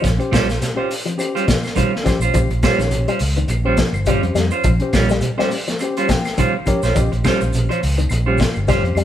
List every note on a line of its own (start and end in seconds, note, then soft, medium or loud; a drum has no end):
0.02 0.18 A#1 loud
0.02 0.18 F3 medium
0.02 kick medium
0.02 snare soft
0.02 closed hi-hat medium
0.02 shekere medium
0.18 0.36 C#4 medium
0.18 0.36 G4 medium
0.18 0.36 C5 medium
0.18 muted clean electric guitar stroke soft
0.18 closed hi-hat soft
0.31 0.58 A#1 medium
0.31 0.48 G3 medium
0.31 0.48 C#4 medium
0.31 0.48 F4 medium
0.31 0.47 C5 medium
0.31 kick medium
0.31 snare medium
0.31 closed hi-hat soft
0.31 claves medium
0.31 shekere medium
0.48 muted clean electric guitar stroke soft
0.48 snare soft
0.48 closed hi-hat soft
0.48 shekere medium
0.60 0.67 G4 medium
0.60 0.68 C5 medium
0.60 snare soft
0.60 closed hi-hat medium
0.60 shekere medium
0.75 0.93 C#4 medium
0.75 0.90 C#4 soft
0.75 0.90 F4 soft
0.75 0.93 G4 medium
0.75 0.94 C5 medium
0.75 0.90 C5 medium
0.75 muted clean electric guitar stroke medium
0.75 claves medium
0.91 muted clean electric guitar stroke soft
0.91 open hi-hat medium
0.91 shekere soft
1.06 1.22 F3 medium
1.06 muted clean electric guitar stroke soft
1.06 closed hi-hat soft
1.06 shekere soft
1.17 1.55 C#4 medium
1.17 1.55 G4 medium
1.17 1.56 C5 medium
1.17 muted clean electric guitar stroke soft
1.17 closed hi-hat medium
1.17 claves medium
1.17 shekere medium
1.35 1.45 G3 medium
1.35 1.46 C#4 medium
1.35 1.46 F4 medium
1.35 1.47 C5 medium
1.35 closed hi-hat soft
1.47 1.64 F3 medium
1.47 muted clean electric guitar stroke soft
1.47 kick medium
1.47 snare medium
1.47 closed hi-hat medium
1.47 shekere medium
1.63 snare soft
1.63 closed hi-hat soft
1.63 claves medium
1.63 shekere soft
1.75 1.93 D#3 medium
1.75 1.92 G3 medium
1.75 1.92 C#4 medium
1.75 1.92 F4 medium
1.75 1.92 C5 medium
1.75 kick medium
1.75 closed hi-hat medium
1.75 shekere medium
1.93 muted clean electric guitar stroke soft
1.93 snare soft
2.03 2.21 F3 medium
2.03 2.18 C#4 medium
2.03 2.18 G4 medium
2.03 2.19 C5 loud
2.03 muted clean electric guitar stroke soft
2.03 kick medium
2.03 snare soft
2.03 closed hi-hat medium
2.03 shekere soft
2.07 claves medium
2.20 2.32 A#1 medium
2.20 2.38 C#4 soft
2.20 2.38 F4 soft
2.20 2.38 C5 medium
2.20 closed hi-hat soft
2.20 shekere medium
2.34 2.48 A#1 loud
2.34 2.50 F3 medium
2.34 2.48 C#4 medium
2.34 2.48 G4 medium
2.34 2.49 C5 medium
2.34 kick medium
2.34 closed hi-hat medium
2.34 shekere medium
2.49 2.61 A#1 medium
2.49 muted clean electric guitar stroke soft
2.49 closed hi-hat soft
2.63 2.79 G3 medium
2.63 3.06 C#4 medium
2.63 2.79 C#4 medium
2.63 2.79 F4 medium
2.63 3.07 G4 medium
2.63 2.79 C5 medium
2.63 3.07 C#5 medium
2.63 kick medium
2.63 snare medium
2.63 closed hi-hat soft
2.63 claves medium
2.63 shekere medium
2.79 3.04 A#1 medium
2.79 2.95 D#3 medium
2.79 muted clean electric guitar stroke soft
2.79 snare soft
2.79 closed hi-hat soft
2.79 shekere medium
2.91 closed hi-hat medium
2.91 shekere medium
3.08 3.24 G3 medium
3.08 3.20 C#4 soft
3.08 3.20 F4 soft
3.08 3.20 C5 soft
3.08 closed hi-hat soft
3.08 claves medium
3.19 3.46 C#2 medium
3.19 muted clean electric guitar stroke soft
3.19 open hi-hat medium
3.19 shekere soft
3.36 3.53 D#3 medium
3.36 muted clean electric guitar stroke soft
3.36 closed hi-hat soft
3.36 shekere soft
3.48 3.75 A#1 medium
3.48 muted clean electric guitar stroke soft
3.48 closed hi-hat soft
3.48 claves medium
3.48 shekere medium
3.64 3.78 G3 medium
3.64 3.82 C#4 medium
3.64 3.78 C#4 medium
3.64 3.79 F4 medium
3.64 3.82 G4 medium
3.64 3.82 C5 medium
3.64 3.78 C5 medium
3.77 3.94 F3 medium
3.77 muted clean electric guitar stroke soft
3.77 kick medium
3.77 snare medium
3.77 closed hi-hat soft
3.77 shekere medium
3.93 4.19 G1 medium
3.93 claves medium
3.93 shekere soft
4.05 4.23 G3 medium
4.05 4.24 G3 medium
4.05 4.37 C#4 medium
4.05 4.22 C#4 medium
4.05 4.22 F4 medium
4.05 4.38 G4 medium
4.05 4.21 C5 medium
4.05 kick medium
4.05 closed hi-hat medium
4.05 shekere medium
4.10 4.39 C5 medium
4.23 4.34 F2 medium
4.23 muted clean electric guitar stroke soft
4.23 closed hi-hat soft
4.35 4.50 F2 medium
4.35 4.51 G3 medium
4.35 muted clean electric guitar stroke soft
4.35 snare soft
4.35 closed hi-hat soft
4.35 claves medium
4.35 shekere soft
4.51 4.69 C#4 soft
4.51 4.68 F4 soft
4.51 4.68 C5 medium
4.51 shekere medium
4.64 4.79 A#1 loud
4.64 4.81 F3 medium
4.64 kick medium
4.64 closed hi-hat medium
4.64 shekere medium
4.80 4.97 C#4 medium
4.80 4.98 G4 medium
4.80 4.98 C5 medium
4.80 muted clean electric guitar stroke soft
4.80 closed hi-hat soft
4.93 5.19 A#1 medium
4.93 5.10 G3 medium
4.93 5.09 C#4 medium
4.93 5.09 F4 medium
4.93 kick medium
4.93 snare medium
4.93 closed hi-hat medium
4.93 claves medium
4.93 shekere medium
5.09 5.26 G3 medium
5.09 muted clean electric guitar stroke soft
5.09 snare soft
5.09 closed hi-hat soft
5.09 shekere medium
5.21 5.29 G4 medium
5.21 5.30 C5 medium
5.21 closed hi-hat medium
5.21 shekere medium
5.38 5.55 G3 medium
5.38 5.55 C#4 medium
5.38 5.51 C#4 soft
5.38 5.51 F4 soft
5.38 5.55 G4 medium
5.38 5.51 C5 medium
5.38 5.56 C5 medium
5.38 snare soft
5.38 claves medium
5.50 muted clean electric guitar stroke soft
5.50 open hi-hat medium
5.50 shekere soft
5.68 5.84 F3 medium
5.68 muted clean electric guitar stroke soft
5.68 snare soft
5.68 closed hi-hat soft
5.68 shekere soft
5.79 6.18 C#4 medium
5.79 6.18 G4 medium
5.79 6.18 C5 medium
5.79 muted clean electric guitar stroke soft
5.79 closed hi-hat medium
5.79 claves medium
5.79 shekere medium
5.97 6.08 G3 medium
5.97 6.08 C#4 medium
5.97 6.09 F4 medium
5.97 6.08 C5 medium
5.97 closed hi-hat soft
6.09 6.25 F3 medium
6.09 6.37 G5 medium
6.09 muted clean electric guitar stroke soft
6.09 kick medium
6.09 snare medium
6.09 closed hi-hat medium
6.09 shekere medium
6.24 snare soft
6.24 closed hi-hat soft
6.24 claves medium
6.24 shekere soft
6.38 6.54 D#3 medium
6.38 6.54 G3 medium
6.38 6.54 C#4 medium
6.38 6.54 F4 medium
6.38 6.53 C5 medium
6.38 6.65 F5 medium
6.38 kick medium
6.38 closed hi-hat medium
6.38 shekere medium
6.55 muted clean electric guitar stroke soft
6.66 6.83 F3 medium
6.66 6.80 C#4 medium
6.66 6.80 G4 medium
6.66 6.81 A#4 loud
6.66 6.94 C#5 medium
6.66 muted clean electric guitar stroke soft
6.66 kick medium
6.66 closed hi-hat medium
6.66 claves medium
6.66 shekere soft
6.83 6.94 A#1 medium
6.83 7.00 C#4 soft
6.83 7.00 F4 soft
6.83 6.99 C5 medium
6.83 snare soft
6.83 closed hi-hat soft
6.83 shekere medium
6.95 7.10 A#1 loud
6.95 7.11 F3 medium
6.95 7.09 C#4 medium
6.95 7.10 G4 medium
6.95 7.10 D#5 medium
6.95 kick medium
6.95 closed hi-hat medium
6.95 shekere medium
7.12 7.23 A#1 medium
7.12 muted clean electric guitar stroke soft
7.12 closed hi-hat soft
7.24 7.41 G3 medium
7.24 7.68 C#4 medium
7.24 7.41 C#4 medium
7.24 7.41 F4 medium
7.24 7.68 G4 medium
7.24 7.40 C5 medium
7.24 7.69 C5 medium
7.24 kick medium
7.24 snare medium
7.24 closed hi-hat soft
7.24 claves medium
7.24 shekere medium
7.41 7.67 A#1 medium
7.41 muted clean electric guitar stroke soft
7.41 closed hi-hat soft
7.41 shekere medium
7.53 closed hi-hat medium
7.53 shekere medium
7.69 7.86 F3 medium
7.69 7.81 C#4 soft
7.69 7.81 F4 soft
7.69 7.81 C5 medium
7.69 closed hi-hat soft
7.69 claves medium
7.82 8.08 C#2 medium
7.82 muted clean electric guitar stroke soft
7.82 open hi-hat medium
7.82 shekere soft
7.97 8.14 D#3 medium
7.97 muted clean electric guitar stroke soft
7.97 closed hi-hat soft
7.97 shekere soft
8.09 8.36 A#1 medium
8.09 muted clean electric guitar stroke soft
8.09 closed hi-hat medium
8.09 claves medium
8.09 shekere medium
8.26 8.39 G3 medium
8.26 8.44 C#4 medium
8.26 8.39 C#4 medium
8.26 8.39 F4 medium
8.26 8.44 G4 medium
8.26 8.39 C5 medium
8.26 8.44 C5 medium
8.38 8.56 F3 medium
8.38 muted clean electric guitar stroke soft
8.38 kick medium
8.38 snare medium
8.38 closed hi-hat soft
8.38 shekere medium
8.54 8.82 G1 medium
8.54 claves medium
8.54 shekere soft
8.67 8.84 G3 medium
8.67 8.98 C#4 medium
8.67 8.84 C#4 medium
8.67 8.84 F4 medium
8.67 8.98 G4 medium
8.67 8.98 C5 medium
8.67 8.83 C5 medium
8.67 kick medium
8.67 snare soft
8.67 closed hi-hat medium
8.67 shekere medium
8.83 8.95 F2 medium
8.83 muted clean electric guitar stroke soft
8.83 closed hi-hat soft
8.95 9.04 F2 medium
8.95 9.04 G3 medium
8.95 muted clean electric guitar stroke soft
8.95 closed hi-hat soft
8.95 claves medium
8.95 shekere soft